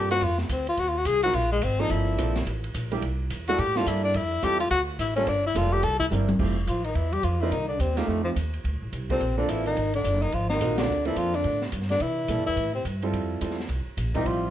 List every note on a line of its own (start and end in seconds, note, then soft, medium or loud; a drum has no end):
0.00 0.21 G2 medium
0.00 0.11 G4 loud
0.11 0.21 A#3 medium
0.11 0.21 C4 medium
0.11 0.21 D4 medium
0.11 0.21 F4 medium
0.11 0.25 F#4 loud
0.11 0.21 C5 medium
0.11 ride soft
0.21 0.49 F2 medium
0.21 0.40 F4 medium
0.21 kick soft
0.21 ride medium
0.38 0.53 A3 soft
0.38 snare soft
0.49 0.76 D2 medium
0.49 0.68 C4 medium
0.49 kick soft
0.49 hi-hat pedal medium
0.49 ride medium
0.67 0.81 F4 medium
0.67 ride soft
0.77 1.05 D#2 medium
0.77 0.90 F#4 loud
0.77 kick soft
0.77 ride medium
0.88 1.00 F4 medium
0.98 1.08 F#4 medium
1.05 1.33 C2 medium
1.05 1.23 G#4 loud
1.05 kick soft
1.05 hi-hat pedal medium
1.05 ride medium
1.23 1.33 F#3 medium
1.23 1.33 C4 medium
1.23 1.34 D#4 medium
1.23 1.33 F4 medium
1.23 1.36 F#4 medium
1.23 1.34 A#4 medium
1.23 ride soft
1.33 1.61 A#1 medium
1.33 1.51 F4 medium
1.33 kick soft
1.33 ride medium
1.52 1.65 G#3 medium
1.62 1.89 G#1 medium
1.62 1.82 C4 medium
1.62 kick soft
1.62 hi-hat pedal medium
1.62 ride medium
1.80 2.16 F3 medium
1.80 2.16 A#3 medium
1.80 2.16 C4 medium
1.80 2.16 D4 medium
1.80 1.92 D#4 medium
1.80 2.16 A4 medium
1.90 2.17 G1 medium
1.90 2.47 E4 medium
1.90 kick soft
1.90 ride medium
2.18 2.45 A#1 medium
2.18 2.34 F3 medium
2.18 2.34 A#3 medium
2.18 2.34 C4 medium
2.18 2.34 D4 medium
2.18 2.34 A4 medium
2.18 kick soft
2.18 hi-hat pedal medium
2.18 ride medium
2.36 snare medium
2.36 ride soft
2.46 2.73 A1 medium
2.46 kick soft
2.46 ride medium
2.64 ride soft
2.74 3.01 A#1 medium
2.74 kick soft
2.74 hi-hat pedal medium
2.74 ride medium
2.92 3.01 G3 medium
2.92 3.01 A#3 medium
2.92 3.02 D4 medium
2.92 3.02 E4 medium
2.92 3.02 G4 medium
2.92 ride soft
3.02 3.29 C2 medium
3.02 kick soft
3.02 ride medium
3.30 3.58 E2 loud
3.30 kick soft
3.30 hi-hat pedal medium
3.30 ride medium
3.48 3.58 G3 medium
3.48 3.58 A#3 medium
3.48 3.58 D4 medium
3.48 3.58 E4 medium
3.48 3.61 F#4 loud
3.48 3.59 A4 medium
3.48 ride soft
3.58 3.86 A2 medium
3.58 3.79 G4 loud
3.58 kick soft
3.58 ride medium
3.76 4.13 G3 medium
3.76 4.13 A#3 medium
3.76 4.13 D4 medium
3.76 4.13 E4 medium
3.76 3.89 F4 loud
3.76 4.13 A4 medium
3.76 snare soft
3.86 4.14 G2 medium
3.86 4.03 E4 medium
3.86 kick soft
3.86 hi-hat pedal medium
3.86 ride medium
4.04 4.18 D4 loud
4.14 4.42 F2 medium
4.14 4.46 E4 loud
4.14 kick soft
4.14 ride medium
4.42 4.70 E2 medium
4.42 4.58 G3 medium
4.42 4.58 C4 medium
4.42 4.59 E4 medium
4.42 4.58 F4 medium
4.42 4.60 G4 loud
4.42 4.59 A4 medium
4.42 kick soft
4.42 hi-hat pedal medium
4.42 ride medium
4.60 4.70 F4 medium
4.60 ride medium
4.70 4.98 D2 medium
4.70 4.81 F#4 loud
4.70 kick soft
4.70 ride medium
4.99 5.26 A1 medium
4.99 5.15 E4 medium
4.99 kick soft
4.99 hi-hat pedal medium
4.99 ride medium
5.16 5.27 G3 medium
5.16 5.26 A#3 medium
5.16 5.30 C#4 medium
5.16 5.27 D4 medium
5.16 5.27 F4 medium
5.16 5.27 A4 medium
5.16 ride soft
5.27 5.54 G1 medium
5.27 5.45 D4 medium
5.27 kick soft
5.27 ride medium
5.47 5.59 E4 loud
5.55 5.82 F1 loud
5.55 5.83 G3 medium
5.55 5.83 A#3 medium
5.55 5.83 D4 medium
5.55 5.83 F4 medium
5.55 5.74 F4 loud
5.55 5.83 A4 medium
5.55 kick soft
5.55 hi-hat pedal medium
5.55 ride medium
5.73 5.85 G4 loud
5.83 6.10 C2 medium
5.83 5.99 A4 loud
5.83 kick soft
5.83 ride medium
5.99 6.06 E4 loud
5.99 kick medium
6.10 6.38 G1 medium
6.10 6.26 G3 medium
6.10 6.27 C4 medium
6.10 6.27 D4 medium
6.10 6.27 E4 medium
6.10 6.27 A#4 medium
6.10 hi-hat pedal medium
6.10 high tom medium
6.29 high tom medium
6.39 6.66 F1 medium
6.39 6.55 A3 medium
6.39 6.55 C4 medium
6.39 6.55 E4 medium
6.39 6.55 F4 medium
6.39 6.55 G4 medium
6.39 kick medium
6.39 crash medium
6.67 6.94 A1 medium
6.67 6.86 F3 medium
6.67 6.86 F4 medium
6.67 kick soft
6.67 hi-hat pedal medium
6.67 ride medium
6.84 6.96 D#3 medium
6.84 6.97 D#4 medium
6.84 ride soft
6.95 7.22 E2 medium
6.95 7.15 E3 medium
6.95 7.15 E4 medium
6.95 kick soft
6.95 ride medium
7.12 7.25 G3 medium
7.12 7.26 G4 medium
7.12 ride soft
7.23 7.51 F2 medium
7.23 7.41 F3 medium
7.23 7.43 F4 medium
7.23 kick soft
7.23 hi-hat pedal medium
7.23 ride medium
7.39 7.53 E3 medium
7.39 7.51 A#3 medium
7.39 7.51 C4 medium
7.39 7.51 D4 medium
7.39 7.53 E4 medium
7.39 7.51 F4 medium
7.43 7.52 D#4 medium
7.51 7.79 C2 medium
7.51 7.68 D#3 medium
7.51 7.68 D#4 medium
7.51 kick soft
7.51 ride medium
7.68 7.81 D3 medium
7.68 7.82 D4 medium
7.79 8.07 D#2 medium
7.79 7.97 C3 medium
7.79 7.99 C4 medium
7.79 kick soft
7.79 hi-hat pedal medium
7.79 ride medium
7.96 8.08 A#2 medium
7.96 8.34 A3 medium
7.96 8.10 A#3 medium
7.96 8.34 C4 medium
7.96 8.34 D#4 medium
7.96 8.34 F4 medium
7.96 8.34 G4 medium
7.96 snare soft
7.96 ride medium
8.07 8.35 F2 medium
8.07 8.24 A2 medium
8.07 8.24 A3 medium
8.07 kick soft
8.24 8.35 F2 medium
8.24 8.31 F3 medium
8.36 8.63 D#2 medium
8.36 kick soft
8.36 hi-hat pedal medium
8.36 ride medium
8.54 ride soft
8.64 8.75 D2 medium
8.64 kick soft
8.64 ride medium
8.73 8.81 A#1 medium
8.82 8.91 A1 medium
8.93 9.19 C2 medium
8.93 kick soft
8.93 hi-hat pedal medium
8.93 ride medium
9.09 9.35 C3 medium
9.09 9.19 A#3 medium
9.09 9.36 C4 medium
9.09 9.20 C4 medium
9.09 9.20 D4 medium
9.09 9.20 F4 medium
9.09 9.20 A4 medium
9.09 kick soft
9.09 ride soft
9.20 9.47 A#1 medium
9.20 kick soft
9.20 ride medium
9.38 9.51 D3 medium
9.38 9.74 A#3 medium
9.38 9.74 C4 medium
9.38 9.74 D4 medium
9.38 9.51 D4 medium
9.38 9.74 F4 medium
9.38 9.74 A4 medium
9.48 9.75 A1 medium
9.48 9.65 E3 medium
9.48 9.66 E4 medium
9.48 kick soft
9.48 hi-hat pedal soft
9.48 ride medium
9.66 9.91 D#3 medium
9.66 9.92 D#4 medium
9.66 ride soft
9.76 10.03 G#1 medium
9.76 kick soft
9.76 ride medium
9.94 10.25 D3 medium
9.94 10.24 D4 medium
9.94 ride soft
10.04 10.31 F#1 medium
10.04 kick soft
10.04 hi-hat pedal medium
10.04 ride medium
10.22 10.34 D#3 medium
10.22 10.36 D#4 medium
10.22 ride soft
10.32 10.59 G#1 medium
10.32 10.50 F3 medium
10.32 10.49 F4 medium
10.32 kick soft
10.32 ride medium
10.50 10.77 D#3 medium
10.50 10.76 D#4 medium
10.50 snare medium
10.61 10.87 A#1 medium
10.61 10.89 A#3 medium
10.61 10.89 C4 medium
10.61 10.89 D#4 medium
10.61 10.89 F4 medium
10.61 10.89 F#4 medium
10.61 kick soft
10.61 hi-hat pedal medium
10.61 ride medium
10.78 11.04 D3 medium
10.78 11.04 D4 medium
10.78 snare medium
10.78 ride medium
10.87 11.15 D2 medium
11.05 11.19 E3 medium
11.05 11.42 A#3 medium
11.05 11.42 C4 medium
11.05 11.42 D4 medium
11.05 11.19 E4 medium
11.05 11.42 F4 medium
11.05 11.43 A4 medium
11.05 ride soft
11.16 11.43 F2 medium
11.16 11.37 F3 medium
11.16 11.37 F4 medium
11.16 kick soft
11.16 hi-hat pedal soft
11.16 ride medium
11.34 11.62 D3 medium
11.34 11.62 D4 medium
11.34 ride soft
11.44 11.72 A2 medium
11.44 kick soft
11.44 ride medium
11.62 snare soft
11.72 11.99 G2 medium
11.72 kick soft
11.72 hi-hat pedal medium
11.72 ride medium
11.82 snare soft
11.89 12.01 D3 medium
11.89 12.04 D4 medium
11.89 snare soft
11.89 ride soft
12.00 12.27 C3 medium
12.00 12.44 E3 medium
12.00 12.46 E4 medium
12.00 kick soft
12.00 ride medium
12.28 12.39 A#2 medium
12.28 12.44 G3 medium
12.28 12.44 A#3 medium
12.28 12.45 D4 medium
12.28 12.45 E4 medium
12.28 12.45 A4 medium
12.28 kick soft
12.28 hi-hat pedal medium
12.28 ride medium
12.39 12.47 G2 medium
12.45 12.56 E2 medium
12.45 12.71 E3 medium
12.45 12.72 E4 medium
12.57 12.84 A2 medium
12.57 kick soft
12.57 ride medium
12.73 12.83 C3 medium
12.73 12.84 C4 medium
12.85 13.12 G2 medium
12.85 kick soft
12.85 hi-hat pedal medium
12.85 ride medium
13.02 13.39 G3 medium
13.02 13.39 C4 medium
13.02 13.39 E4 medium
13.02 13.39 F4 medium
13.02 13.39 A4 medium
13.02 ride soft
13.12 13.40 F2 medium
13.12 kick soft
13.12 ride medium
13.41 13.68 E2 medium
13.41 13.57 G3 medium
13.41 13.57 C4 medium
13.41 13.57 E4 medium
13.41 13.57 F4 medium
13.41 13.57 A4 medium
13.41 kick soft
13.41 hi-hat pedal medium
13.41 ride medium
13.51 snare soft
13.60 snare soft
13.69 13.85 C2 medium
13.69 kick soft
13.69 ride medium
13.86 muted upright bass stroke soft
13.97 14.24 A#1 medium
13.97 kick soft
13.97 hi-hat pedal medium
13.97 ride medium
14.14 14.26 D#3 medium
14.14 14.50 G3 medium
14.14 14.50 C4 medium
14.14 14.28 D#4 medium
14.14 14.50 E4 medium
14.14 14.50 F4 medium
14.14 14.50 G4 medium
14.14 kick soft
14.14 ride soft
14.24 14.50 A1 medium
14.24 14.50 F3 medium
14.24 14.50 F4 medium
14.24 kick soft
14.24 ride medium